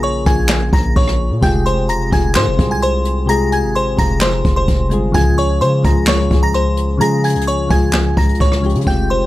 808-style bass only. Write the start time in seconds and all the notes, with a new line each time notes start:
Already playing: A#1
0.26 A#1
0.73 A#1
0.96 A#1
1.31 A#2
1.43 F1
1.89 E1
2.01 F1
2.12 F1
2.36 G#2
2.47 F1
2.59 C2
3.64 G#1
3.99 F1
4.45 F1
4.68 F1
4.91 G1
5.15 C#2
5.61 C#3
5.85 C#2
6.31 C#2
7.01 C#3
7.36 C#2
7.71 C#2
8.17 C#2
8.40 C#2
8.75 C#3
8.87 F1